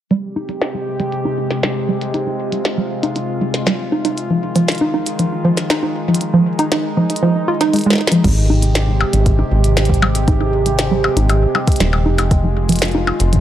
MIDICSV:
0, 0, Header, 1, 6, 480
1, 0, Start_track
1, 0, Key_signature, -4, "major"
1, 0, Tempo, 508475
1, 102, Time_signature, 4, 2, 24, 8
1, 12653, End_track
2, 0, Start_track
2, 0, Title_t, "Ambient pad"
2, 0, Program_c, 0, 92
2, 100, Note_on_c, 0, 48, 73
2, 100, Note_on_c, 0, 56, 64
2, 101, Note_on_c, 0, 67, 85
2, 2002, Note_off_c, 0, 67, 0
2, 2020, Note_on_c, 0, 65, 79
2, 3903, Note_off_c, 0, 48, 0
2, 3903, Note_off_c, 0, 56, 0
2, 3941, Note_on_c, 0, 51, 75
2, 3941, Note_on_c, 0, 56, 71
2, 5823, Note_off_c, 0, 65, 0
2, 5861, Note_on_c, 0, 63, 85
2, 7744, Note_off_c, 0, 51, 0
2, 7744, Note_off_c, 0, 56, 0
2, 7762, Note_off_c, 0, 63, 0
2, 7781, Note_on_c, 0, 56, 69
2, 7781, Note_on_c, 0, 67, 82
2, 7782, Note_on_c, 0, 48, 75
2, 11584, Note_off_c, 0, 48, 0
2, 11584, Note_off_c, 0, 67, 0
2, 11620, Note_on_c, 0, 65, 84
2, 11621, Note_on_c, 0, 51, 76
2, 12653, Note_off_c, 0, 51, 0
2, 12653, Note_off_c, 0, 56, 0
2, 12653, Note_off_c, 0, 65, 0
2, 12653, End_track
3, 0, Start_track
3, 0, Title_t, "Synth arpeggio sound"
3, 0, Program_c, 1, 84
3, 103, Note_on_c, 1, 55, 100
3, 216, Note_off_c, 1, 55, 0
3, 342, Note_on_c, 1, 63, 95
3, 451, Note_off_c, 1, 63, 0
3, 462, Note_on_c, 1, 63, 73
3, 568, Note_off_c, 1, 63, 0
3, 703, Note_on_c, 1, 55, 72
3, 808, Note_off_c, 1, 55, 0
3, 943, Note_on_c, 1, 55, 95
3, 1056, Note_off_c, 1, 55, 0
3, 1182, Note_on_c, 1, 63, 97
3, 1291, Note_off_c, 1, 63, 0
3, 1302, Note_on_c, 1, 63, 71
3, 1408, Note_off_c, 1, 63, 0
3, 1542, Note_on_c, 1, 55, 80
3, 1648, Note_off_c, 1, 55, 0
3, 1782, Note_on_c, 1, 55, 91
3, 1896, Note_off_c, 1, 55, 0
3, 2022, Note_on_c, 1, 63, 98
3, 2131, Note_off_c, 1, 63, 0
3, 2142, Note_on_c, 1, 63, 73
3, 2248, Note_off_c, 1, 63, 0
3, 2382, Note_on_c, 1, 55, 76
3, 2488, Note_off_c, 1, 55, 0
3, 2623, Note_on_c, 1, 55, 97
3, 2736, Note_off_c, 1, 55, 0
3, 2862, Note_on_c, 1, 63, 97
3, 2971, Note_off_c, 1, 63, 0
3, 2983, Note_on_c, 1, 63, 78
3, 3088, Note_off_c, 1, 63, 0
3, 3222, Note_on_c, 1, 55, 72
3, 3328, Note_off_c, 1, 55, 0
3, 3462, Note_on_c, 1, 55, 96
3, 3576, Note_off_c, 1, 55, 0
3, 3702, Note_on_c, 1, 63, 90
3, 3811, Note_off_c, 1, 63, 0
3, 3822, Note_on_c, 1, 63, 74
3, 3928, Note_off_c, 1, 63, 0
3, 4063, Note_on_c, 1, 53, 75
3, 4168, Note_off_c, 1, 53, 0
3, 4302, Note_on_c, 1, 53, 103
3, 4416, Note_off_c, 1, 53, 0
3, 4542, Note_on_c, 1, 63, 99
3, 4651, Note_off_c, 1, 63, 0
3, 4663, Note_on_c, 1, 63, 74
3, 4768, Note_off_c, 1, 63, 0
3, 4902, Note_on_c, 1, 53, 79
3, 5008, Note_off_c, 1, 53, 0
3, 5142, Note_on_c, 1, 53, 99
3, 5256, Note_off_c, 1, 53, 0
3, 5382, Note_on_c, 1, 63, 102
3, 5491, Note_off_c, 1, 63, 0
3, 5502, Note_on_c, 1, 63, 73
3, 5608, Note_off_c, 1, 63, 0
3, 5742, Note_on_c, 1, 53, 73
3, 5848, Note_off_c, 1, 53, 0
3, 5982, Note_on_c, 1, 53, 103
3, 6096, Note_off_c, 1, 53, 0
3, 6222, Note_on_c, 1, 63, 102
3, 6331, Note_off_c, 1, 63, 0
3, 6342, Note_on_c, 1, 63, 84
3, 6448, Note_off_c, 1, 63, 0
3, 6582, Note_on_c, 1, 53, 73
3, 6688, Note_off_c, 1, 53, 0
3, 6822, Note_on_c, 1, 53, 97
3, 6936, Note_off_c, 1, 53, 0
3, 7062, Note_on_c, 1, 65, 97
3, 7176, Note_off_c, 1, 65, 0
3, 7182, Note_on_c, 1, 63, 101
3, 7296, Note_off_c, 1, 63, 0
3, 7302, Note_on_c, 1, 56, 79
3, 7408, Note_off_c, 1, 56, 0
3, 7423, Note_on_c, 1, 56, 96
3, 7528, Note_off_c, 1, 56, 0
3, 7663, Note_on_c, 1, 53, 72
3, 7776, Note_off_c, 1, 53, 0
3, 7783, Note_on_c, 1, 55, 99
3, 7897, Note_off_c, 1, 55, 0
3, 8023, Note_on_c, 1, 63, 99
3, 8132, Note_off_c, 1, 63, 0
3, 8143, Note_on_c, 1, 63, 76
3, 8248, Note_off_c, 1, 63, 0
3, 8383, Note_on_c, 1, 55, 76
3, 8488, Note_off_c, 1, 55, 0
3, 8623, Note_on_c, 1, 55, 101
3, 8737, Note_off_c, 1, 55, 0
3, 8863, Note_on_c, 1, 63, 97
3, 8972, Note_off_c, 1, 63, 0
3, 8984, Note_on_c, 1, 63, 72
3, 9089, Note_off_c, 1, 63, 0
3, 9223, Note_on_c, 1, 55, 80
3, 9328, Note_off_c, 1, 55, 0
3, 9463, Note_on_c, 1, 55, 93
3, 9576, Note_off_c, 1, 55, 0
3, 9703, Note_on_c, 1, 63, 98
3, 9812, Note_off_c, 1, 63, 0
3, 9823, Note_on_c, 1, 63, 76
3, 9928, Note_off_c, 1, 63, 0
3, 10063, Note_on_c, 1, 55, 78
3, 10168, Note_off_c, 1, 55, 0
3, 10303, Note_on_c, 1, 55, 101
3, 10416, Note_off_c, 1, 55, 0
3, 10543, Note_on_c, 1, 63, 97
3, 10651, Note_off_c, 1, 63, 0
3, 10663, Note_on_c, 1, 63, 79
3, 10768, Note_off_c, 1, 63, 0
3, 10903, Note_on_c, 1, 55, 73
3, 11008, Note_off_c, 1, 55, 0
3, 11143, Note_on_c, 1, 55, 101
3, 11256, Note_off_c, 1, 55, 0
3, 11383, Note_on_c, 1, 63, 98
3, 11492, Note_off_c, 1, 63, 0
3, 11503, Note_on_c, 1, 63, 78
3, 11608, Note_off_c, 1, 63, 0
3, 11742, Note_on_c, 1, 53, 76
3, 11848, Note_off_c, 1, 53, 0
3, 11982, Note_on_c, 1, 53, 102
3, 12096, Note_off_c, 1, 53, 0
3, 12222, Note_on_c, 1, 63, 102
3, 12331, Note_off_c, 1, 63, 0
3, 12342, Note_on_c, 1, 63, 73
3, 12448, Note_off_c, 1, 63, 0
3, 12582, Note_on_c, 1, 53, 78
3, 12653, Note_off_c, 1, 53, 0
3, 12653, End_track
4, 0, Start_track
4, 0, Title_t, "Acid bass"
4, 0, Program_c, 2, 38
4, 7781, Note_on_c, 2, 32, 96
4, 8549, Note_off_c, 2, 32, 0
4, 8622, Note_on_c, 2, 32, 100
4, 8910, Note_off_c, 2, 32, 0
4, 8982, Note_on_c, 2, 32, 90
4, 10470, Note_off_c, 2, 32, 0
4, 10542, Note_on_c, 2, 32, 96
4, 10829, Note_off_c, 2, 32, 0
4, 11141, Note_on_c, 2, 27, 103
4, 11381, Note_on_c, 2, 29, 95
4, 11395, Note_off_c, 2, 27, 0
4, 12389, Note_off_c, 2, 29, 0
4, 12462, Note_on_c, 2, 29, 102
4, 12653, Note_off_c, 2, 29, 0
4, 12653, End_track
5, 0, Start_track
5, 0, Title_t, "Percussion blips"
5, 8501, Note_on_c, 9, 60, 51
5, 8596, Note_off_c, 9, 60, 0
5, 9463, Note_on_c, 9, 60, 77
5, 9557, Note_off_c, 9, 60, 0
5, 10423, Note_on_c, 9, 60, 49
5, 10518, Note_off_c, 9, 60, 0
5, 10663, Note_on_c, 9, 60, 34
5, 10757, Note_off_c, 9, 60, 0
5, 10902, Note_on_c, 9, 60, 50
5, 10997, Note_off_c, 9, 60, 0
5, 11262, Note_on_c, 9, 60, 51
5, 11356, Note_off_c, 9, 60, 0
5, 11502, Note_on_c, 9, 60, 52
5, 11596, Note_off_c, 9, 60, 0
5, 12341, Note_on_c, 9, 60, 48
5, 12435, Note_off_c, 9, 60, 0
5, 12653, End_track
6, 0, Start_track
6, 0, Title_t, "Drums"
6, 102, Note_on_c, 9, 42, 49
6, 196, Note_off_c, 9, 42, 0
6, 461, Note_on_c, 9, 42, 59
6, 556, Note_off_c, 9, 42, 0
6, 581, Note_on_c, 9, 38, 106
6, 581, Note_on_c, 9, 42, 47
6, 675, Note_off_c, 9, 38, 0
6, 675, Note_off_c, 9, 42, 0
6, 941, Note_on_c, 9, 42, 61
6, 1035, Note_off_c, 9, 42, 0
6, 1061, Note_on_c, 9, 42, 48
6, 1155, Note_off_c, 9, 42, 0
6, 1421, Note_on_c, 9, 38, 52
6, 1421, Note_on_c, 9, 42, 57
6, 1516, Note_off_c, 9, 38, 0
6, 1516, Note_off_c, 9, 42, 0
6, 1541, Note_on_c, 9, 38, 108
6, 1541, Note_on_c, 9, 42, 47
6, 1636, Note_off_c, 9, 38, 0
6, 1636, Note_off_c, 9, 42, 0
6, 1902, Note_on_c, 9, 42, 62
6, 1996, Note_off_c, 9, 42, 0
6, 2022, Note_on_c, 9, 42, 50
6, 2117, Note_off_c, 9, 42, 0
6, 2382, Note_on_c, 9, 42, 59
6, 2477, Note_off_c, 9, 42, 0
6, 2502, Note_on_c, 9, 38, 103
6, 2502, Note_on_c, 9, 42, 50
6, 2596, Note_off_c, 9, 38, 0
6, 2596, Note_off_c, 9, 42, 0
6, 2862, Note_on_c, 9, 42, 63
6, 2957, Note_off_c, 9, 42, 0
6, 2982, Note_on_c, 9, 42, 49
6, 3076, Note_off_c, 9, 42, 0
6, 3342, Note_on_c, 9, 38, 56
6, 3342, Note_on_c, 9, 42, 61
6, 3436, Note_off_c, 9, 38, 0
6, 3436, Note_off_c, 9, 42, 0
6, 3462, Note_on_c, 9, 38, 112
6, 3462, Note_on_c, 9, 42, 50
6, 3556, Note_off_c, 9, 38, 0
6, 3556, Note_off_c, 9, 42, 0
6, 3822, Note_on_c, 9, 42, 65
6, 3916, Note_off_c, 9, 42, 0
6, 3942, Note_on_c, 9, 42, 48
6, 4037, Note_off_c, 9, 42, 0
6, 4301, Note_on_c, 9, 42, 61
6, 4396, Note_off_c, 9, 42, 0
6, 4422, Note_on_c, 9, 38, 109
6, 4422, Note_on_c, 9, 42, 46
6, 4452, Note_off_c, 9, 42, 0
6, 4452, Note_on_c, 9, 42, 37
6, 4482, Note_off_c, 9, 42, 0
6, 4482, Note_on_c, 9, 42, 31
6, 4511, Note_off_c, 9, 42, 0
6, 4511, Note_on_c, 9, 42, 26
6, 4516, Note_off_c, 9, 38, 0
6, 4606, Note_off_c, 9, 42, 0
6, 4781, Note_on_c, 9, 42, 63
6, 4875, Note_off_c, 9, 42, 0
6, 4901, Note_on_c, 9, 42, 49
6, 4995, Note_off_c, 9, 42, 0
6, 5261, Note_on_c, 9, 38, 54
6, 5261, Note_on_c, 9, 42, 60
6, 5356, Note_off_c, 9, 38, 0
6, 5356, Note_off_c, 9, 42, 0
6, 5381, Note_on_c, 9, 38, 117
6, 5381, Note_on_c, 9, 42, 50
6, 5476, Note_off_c, 9, 38, 0
6, 5476, Note_off_c, 9, 42, 0
6, 5801, Note_on_c, 9, 42, 65
6, 5861, Note_off_c, 9, 42, 0
6, 5861, Note_on_c, 9, 42, 49
6, 5956, Note_off_c, 9, 42, 0
6, 6221, Note_on_c, 9, 42, 58
6, 6315, Note_off_c, 9, 42, 0
6, 6341, Note_on_c, 9, 38, 109
6, 6341, Note_on_c, 9, 42, 46
6, 6435, Note_off_c, 9, 38, 0
6, 6435, Note_off_c, 9, 42, 0
6, 6701, Note_on_c, 9, 42, 60
6, 6761, Note_off_c, 9, 42, 0
6, 6761, Note_on_c, 9, 42, 50
6, 6855, Note_off_c, 9, 42, 0
6, 7182, Note_on_c, 9, 38, 59
6, 7182, Note_on_c, 9, 42, 57
6, 7276, Note_off_c, 9, 38, 0
6, 7276, Note_off_c, 9, 42, 0
6, 7302, Note_on_c, 9, 42, 45
6, 7326, Note_off_c, 9, 42, 0
6, 7326, Note_on_c, 9, 42, 39
6, 7350, Note_off_c, 9, 42, 0
6, 7350, Note_on_c, 9, 42, 31
6, 7374, Note_off_c, 9, 42, 0
6, 7374, Note_on_c, 9, 42, 25
6, 7397, Note_off_c, 9, 42, 0
6, 7397, Note_on_c, 9, 42, 21
6, 7462, Note_on_c, 9, 38, 76
6, 7486, Note_off_c, 9, 38, 0
6, 7486, Note_on_c, 9, 38, 59
6, 7492, Note_off_c, 9, 42, 0
6, 7510, Note_off_c, 9, 38, 0
6, 7510, Note_on_c, 9, 38, 51
6, 7534, Note_off_c, 9, 38, 0
6, 7534, Note_on_c, 9, 38, 41
6, 7558, Note_off_c, 9, 38, 0
6, 7558, Note_on_c, 9, 38, 34
6, 7622, Note_off_c, 9, 38, 0
6, 7622, Note_on_c, 9, 38, 91
6, 7662, Note_on_c, 9, 42, 63
6, 7716, Note_off_c, 9, 38, 0
6, 7757, Note_off_c, 9, 42, 0
6, 7781, Note_on_c, 9, 36, 97
6, 7783, Note_on_c, 9, 42, 53
6, 7783, Note_on_c, 9, 49, 87
6, 7876, Note_off_c, 9, 36, 0
6, 7877, Note_off_c, 9, 42, 0
6, 7877, Note_off_c, 9, 49, 0
6, 8142, Note_on_c, 9, 42, 64
6, 8236, Note_off_c, 9, 42, 0
6, 8262, Note_on_c, 9, 38, 111
6, 8262, Note_on_c, 9, 42, 49
6, 8356, Note_off_c, 9, 38, 0
6, 8356, Note_off_c, 9, 42, 0
6, 8622, Note_on_c, 9, 42, 64
6, 8716, Note_off_c, 9, 42, 0
6, 8741, Note_on_c, 9, 36, 81
6, 8742, Note_on_c, 9, 42, 52
6, 8836, Note_off_c, 9, 36, 0
6, 8836, Note_off_c, 9, 42, 0
6, 9102, Note_on_c, 9, 42, 62
6, 9196, Note_off_c, 9, 42, 0
6, 9221, Note_on_c, 9, 38, 112
6, 9221, Note_on_c, 9, 42, 50
6, 9302, Note_off_c, 9, 42, 0
6, 9302, Note_on_c, 9, 42, 39
6, 9316, Note_off_c, 9, 38, 0
6, 9342, Note_on_c, 9, 36, 81
6, 9382, Note_off_c, 9, 42, 0
6, 9382, Note_on_c, 9, 42, 33
6, 9436, Note_off_c, 9, 36, 0
6, 9476, Note_off_c, 9, 42, 0
6, 9582, Note_on_c, 9, 42, 68
6, 9677, Note_off_c, 9, 42, 0
6, 9702, Note_on_c, 9, 36, 98
6, 9702, Note_on_c, 9, 42, 51
6, 9796, Note_off_c, 9, 36, 0
6, 9797, Note_off_c, 9, 42, 0
6, 10063, Note_on_c, 9, 42, 65
6, 10157, Note_off_c, 9, 42, 0
6, 10183, Note_on_c, 9, 38, 117
6, 10183, Note_on_c, 9, 42, 51
6, 10277, Note_off_c, 9, 38, 0
6, 10277, Note_off_c, 9, 42, 0
6, 10542, Note_on_c, 9, 42, 65
6, 10637, Note_off_c, 9, 42, 0
6, 10663, Note_on_c, 9, 42, 52
6, 10757, Note_off_c, 9, 42, 0
6, 11022, Note_on_c, 9, 36, 115
6, 11022, Note_on_c, 9, 42, 59
6, 11062, Note_off_c, 9, 42, 0
6, 11062, Note_on_c, 9, 42, 48
6, 11102, Note_off_c, 9, 42, 0
6, 11102, Note_on_c, 9, 42, 39
6, 11116, Note_off_c, 9, 36, 0
6, 11143, Note_off_c, 9, 42, 0
6, 11143, Note_on_c, 9, 38, 118
6, 11143, Note_on_c, 9, 42, 52
6, 11237, Note_off_c, 9, 38, 0
6, 11237, Note_off_c, 9, 42, 0
6, 11502, Note_on_c, 9, 42, 68
6, 11596, Note_off_c, 9, 42, 0
6, 11621, Note_on_c, 9, 36, 105
6, 11622, Note_on_c, 9, 42, 52
6, 11716, Note_off_c, 9, 36, 0
6, 11716, Note_off_c, 9, 42, 0
6, 11982, Note_on_c, 9, 42, 59
6, 12011, Note_off_c, 9, 42, 0
6, 12011, Note_on_c, 9, 42, 48
6, 12042, Note_off_c, 9, 42, 0
6, 12042, Note_on_c, 9, 42, 40
6, 12072, Note_off_c, 9, 42, 0
6, 12072, Note_on_c, 9, 42, 33
6, 12101, Note_off_c, 9, 42, 0
6, 12101, Note_on_c, 9, 38, 114
6, 12101, Note_on_c, 9, 42, 50
6, 12162, Note_off_c, 9, 42, 0
6, 12162, Note_on_c, 9, 42, 18
6, 12191, Note_off_c, 9, 42, 0
6, 12191, Note_on_c, 9, 42, 15
6, 12195, Note_off_c, 9, 38, 0
6, 12286, Note_off_c, 9, 42, 0
6, 12461, Note_on_c, 9, 42, 65
6, 12556, Note_off_c, 9, 42, 0
6, 12581, Note_on_c, 9, 36, 37
6, 12582, Note_on_c, 9, 42, 52
6, 12611, Note_off_c, 9, 36, 0
6, 12611, Note_on_c, 9, 36, 42
6, 12653, Note_off_c, 9, 36, 0
6, 12653, Note_off_c, 9, 42, 0
6, 12653, End_track
0, 0, End_of_file